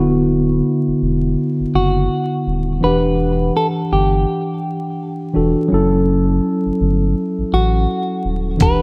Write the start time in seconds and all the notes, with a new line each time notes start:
Already playing: D1 D3 B3 E4 F#4
0.87 E1
1.02 E1
1.60 F#1
1.74 F#1 F#4
2.47 D#1
2.81 E1 E3 D4 B4 F#5
2.86 G4
3.57 A4
3.92 G1 G4
5.33 E1 E3 D4 F#4 A4
5.68 F#1 F#3 C#4
5.72 E4 A4
6.65 G1
6.80 G1
7.38 A1
7.52 A1 F#4
8.25 D#1
8.57 E1 E3 D4 F#5, kick, closed hi-hat
8.62 G4 B4